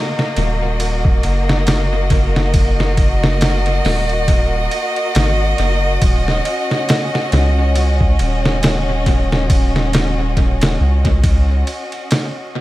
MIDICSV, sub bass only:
0, 0, Header, 1, 2, 480
1, 0, Start_track
1, 0, Tempo, 869565
1, 1402, Time_signature, 4, 2, 24, 8
1, 6960, End_track
2, 0, Start_track
2, 0, Title_t, "Sub bass"
2, 0, Program_c, 0, 38
2, 204, Note_on_c, 0, 27, 88
2, 663, Note_off_c, 0, 27, 0
2, 683, Note_on_c, 0, 30, 96
2, 2103, Note_off_c, 0, 30, 0
2, 2124, Note_on_c, 0, 27, 83
2, 2583, Note_off_c, 0, 27, 0
2, 2846, Note_on_c, 0, 32, 84
2, 3059, Note_off_c, 0, 32, 0
2, 3084, Note_on_c, 0, 30, 87
2, 3298, Note_off_c, 0, 30, 0
2, 3322, Note_on_c, 0, 27, 106
2, 3537, Note_off_c, 0, 27, 0
2, 4044, Note_on_c, 0, 37, 86
2, 4503, Note_off_c, 0, 37, 0
2, 4525, Note_on_c, 0, 27, 91
2, 5943, Note_off_c, 0, 27, 0
2, 5964, Note_on_c, 0, 37, 86
2, 6423, Note_off_c, 0, 37, 0
2, 6960, End_track
0, 0, End_of_file